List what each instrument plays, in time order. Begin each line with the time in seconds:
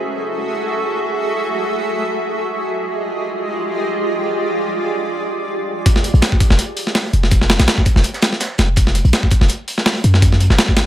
Already playing: ambient pad F#4 G#4 A4 E5
2.22 ambient pad F4 G4 G#4
3.67 ambient pad D5
5.86 kick, closed hi-hat
5.96 snare
6.04 closed hi-hat
6.14 808-style bass A#1, closed hi-hat
6.22 snare, closed hi-hat
6.32 kick
6.40 kick, closed hi-hat
6.50 808-style bass F1, snare
6.59 closed hi-hat
6.77 closed hi-hat, open hi-hat
6.87 snare
6.95 snare, closed hi-hat, open hi-hat
7.13 808-style bass F1, closed hi-hat
7.23 snare
7.31 kick, closed hi-hat
7.41 snare
7.50 snare, closed hi-hat
7.58 808-style bass A#1, snare
7.60 snare, closed hi-hat
7.67 snare, closed hi-hat
7.77 kick, snare
7.85 kick, closed hi-hat
7.96 808-style bass F1, snare
8.03 closed hi-hat
8.14 snare, closed hi-hat
8.22 snare, closed hi-hat
8.33 snare
8.40 snare, closed hi-hat
8.58 808-style bass F1, snare, closed hi-hat
8.76 kick, closed hi-hat
8.87 snare
8.95 closed hi-hat
9.05 808-style bass A#1, closed hi-hat
9.13 snare, closed hi-hat
9.23 kick
9.30 kick, closed hi-hat
9.41 808-style bass F1, snare
9.48 closed hi-hat
9.68 closed hi-hat, open hi-hat
9.78 snare
9.86 snare, closed hi-hat, open hi-hat
10.04 808-style bass F#2, closed hi-hat
10.14 snare
10.22 kick, closed hi-hat
10.32 snare
10.40 closed hi-hat
10.50 808-style bass F#1, snare
10.58 snare, closed hi-hat
10.68 kick, snare
10.77 snare, closed hi-hat